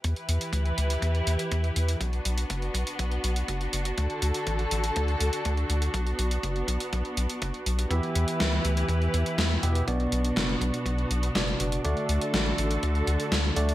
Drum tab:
HH |xxxxxxxxxxxxxxxx|xxxxxxxxxxxxxxxx|xxxxxxxxxxxxxxxx|xxxxxxxxxxxxxxxx|
SD |----------------|----------------|----------------|----------------|
BD |o---o---o---o---|o---o-o-o---o---|o---o---o---o---|o---o-o-o---o---|

HH |xxxxxxxxxxxxxxxx|xxxxxxxxxxxxxxxx|xxxxxxxxxxxxxxxx|
SD |----o-------o---|----o-------o---|----o-------o---|
BD |o---o---o---o---|o---o-o-o---o---|o---o---o---o---|